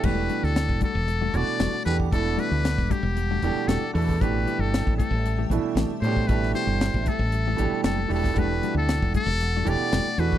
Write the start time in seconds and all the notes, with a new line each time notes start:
0.03 E1 B2 E3 G3 A3 D4 F#4 G4 B4 F#5 A5 D6, kick, crash
0.29 G3 A3 D4 F#4, closed hi-hat
0.43 D2 A4, muted clean electric guitar stroke, snare
0.56 snare, closed hi-hat
0.69 E1, muted clean electric guitar stroke, kick
0.81 G3 A3 D4 F#4 A4, kick, closed hi-hat
0.95 E1
1.08 muted clean electric guitar stroke, closed hi-hat
1.21 G3 A3 D4 F#4
1.34 E1 B2 E3 A3 D4 F#4 D5, closed hi-hat
1.47 muted clean electric guitar stroke
1.59 E1 G3 A3 D4 F#4, snare, closed hi-hat
1.73 A3 D4 F#4, muted fretless electric bass stroke
1.85 E2 B2 E3 A3 D4 G4 B4, muted clean electric guitar stroke, closed hi-hat
1.99 muted clean electric guitar stroke, kick
2.12 E1 B2 E3 A3 D4 E4 A4, kick, closed hi-hat
2.37 G3 A3 D4 F#4 B4, closed hi-hat
2.51 D2, muted clean electric guitar stroke
2.65 snare, closed hi-hat
2.78 E1, muted clean electric guitar stroke, kick
2.90 G3 A3 D4 F#4 G4, kick, closed hi-hat
3.03 E1, muted clean electric guitar stroke
3.17 muted clean electric guitar stroke, closed hi-hat
3.31 G3 A3 D4 F#4
3.42 E1 B2 E3 A3 D4 G4, closed hi-hat
3.57 muted clean electric guitar stroke
3.68 E1 G3 A3 D4 F#4 A4, snare, closed hi-hat
3.81 A3 D4 F#4, muted fretless electric bass stroke
3.93 E2 B2 E3 A3 D4 E4 A4, muted clean electric guitar stroke, open hi-hat
4.09 muted clean electric guitar stroke, kick
4.19 A1 B2 E3 A3 C4 G4 B4 E5 G5, kick, closed hi-hat
4.23 D4 G4
4.47 E3 A3 C4 G4, closed hi-hat
4.59 G1 A4
4.74 snare, closed hi-hat
4.86 A1, muted clean electric guitar stroke, kick
4.97 E3 A3 C4 G4 A4, kick, closed hi-hat
5.11 A1, muted clean electric guitar stroke
5.26 muted clean electric guitar stroke, closed hi-hat
5.39 E3 A3 C4 G4
5.50 A1 B2 E3 A3 D4 E4, muted clean electric guitar stroke, closed hi-hat
5.63 muted fretless electric bass stroke, muted clean electric guitar stroke
5.75 A1 E3 A3 C4 G4, snare, closed hi-hat
5.90 C4 G4, muted fretless electric bass stroke
6.01 A2 B2 E3 C5, muted clean electric guitar stroke, closed hi-hat
6.05 A3 D4 G4
6.16 muted clean electric guitar stroke, kick
6.27 A1 B2 E3 A3 D4 G4 B4, kick, closed hi-hat
6.43 snare
6.54 E3 A3 C4 G4 C5, closed hi-hat
6.67 G1
6.81 snare, closed hi-hat
6.94 A1, muted clean electric guitar stroke, kick
7.06 E3 A3 C4 G4 A4, kick, closed hi-hat
7.19 A1, muted clean electric guitar stroke
7.32 muted clean electric guitar stroke, closed hi-hat
7.47 E3 A3 C4 G4
7.57 A1 B2 E3 A3 D4 G4, muted clean electric guitar stroke, closed hi-hat
7.72 muted fretless electric bass stroke, muted clean electric guitar stroke
7.84 F#1 E3 A3 C4 G4 A4, snare, closed hi-hat
7.98 A3 C4 G4
8.08 E1 B2 E3 A3 D4 G4, open hi-hat
8.14 A4
8.24 muted clean electric guitar stroke, kick, snare
8.34 E1 B2 E3 G3 A3 D4 G4 F#5 D6, kick, closed hi-hat
8.38 A3 D4 F#4 B4
8.63 G3 A3 D4 F#4, closed hi-hat
8.75 D2 A4, muted clean electric guitar stroke
8.89 snare, closed hi-hat
9.02 E1, muted clean electric guitar stroke, kick
9.14 G3 A3 D4 F#4 A4, kick, closed hi-hat
9.26 E1, muted clean electric guitar stroke
9.40 muted clean electric guitar stroke, closed hi-hat
9.57 G3 A3 D4 F#4
9.65 E1 B2 E3 A3 D4 G4, closed hi-hat
9.69 D5
9.80 muted fretless electric bass stroke, muted clean electric guitar stroke
9.92 E1 G3 A3, snare, closed hi-hat
9.97 D4 F#4
10.09 A3 D4 F#4
10.18 E2 B2 E3 A3 D4 F#4 B4, closed hi-hat
10.32 muted clean electric guitar stroke, kick